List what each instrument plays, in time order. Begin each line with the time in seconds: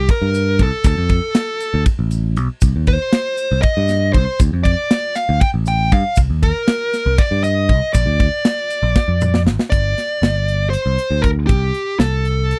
Already playing: lead electric guitar G4
0.09 lead electric guitar A#4, kick, ride
0.22 picked electric bass G2
0.34 ride, shaker
0.59 picked electric bass C2, lead electric guitar A4, kick, ride
0.84 picked electric bass D2, lead electric guitar A4, kick, ride, shaker
0.98 picked electric bass F2
1.09 kick, ride
1.35 snare, ride, shaker
1.60 ride, shaker
1.74 picked electric bass D2
1.86 kick, ride, shaker
1.99 picked electric bass A1
2.11 ride, shaker
2.36 picked electric bass B1, ride, shaker
2.61 picked electric bass C2, kick, ride, shaker
2.76 picked electric bass D#2
2.87 lead electric guitar C5, kick, ride
3.13 snare, ride
3.37 ride, shaker
3.52 picked electric bass C2
3.62 lead electric guitar D#5, kick, ride
3.77 picked electric bass G2
3.88 snare, ride, shaker
4.13 picked electric bass C2, lead electric guitar C5, kick, ride
4.39 picked electric bass D2, kick, ride, shaker
4.53 picked electric bass F2
4.63 lead electric guitar D5, kick, ride
4.91 snare, ride
5.15 lead electric guitar F5, snare, ride, shaker
5.29 picked electric bass D2
5.41 lead electric guitar G5, kick, ride
5.54 picked electric bass A1
5.66 lead electric guitar G5, ride, shaker
5.92 picked electric bass G2, lead electric guitar F5, kick, ride
6.16 picked electric bass C2, kick, ride, shaker
6.30 picked electric bass D#2
6.43 lead electric guitar A#4, kick, ride
6.68 snare, ride
6.93 snare, ride, shaker
7.06 picked electric bass C2
7.18 lead electric guitar D5, kick, ride
7.31 picked electric bass G2
7.44 lead electric guitar D#5, ride, shaker
7.69 picked electric bass C2, kick, ride
7.93 picked electric bass A#1, lead electric guitar D5, kick, ride, shaker
8.06 picked electric bass D2
8.20 kick, ride
8.45 snare, ride
8.70 ride, shaker
8.83 picked electric bass A#1
8.96 kick, snare
9.08 picked electric bass F2
9.21 mid tom, shaker
9.34 snare
9.46 picked electric bass G#1, snare
9.59 snare
9.70 picked electric bass G1, lead electric guitar D5, kick, closed hi-hat
9.98 snare, closed hi-hat
10.22 picked electric bass G1, snare, closed hi-hat
10.48 closed hi-hat
10.70 lead electric guitar C5, closed hi-hat
10.86 picked electric bass C2
10.98 closed hi-hat
11.11 picked electric bass D2
11.22 lead electric guitar A#4, kick, closed hi-hat
11.47 picked electric bass C2, lead electric guitar G4, kick, closed hi-hat
11.74 closed hi-hat
11.99 picked electric bass C2, lead electric guitar A4, snare, closed hi-hat
12.25 closed hi-hat
12.51 closed hi-hat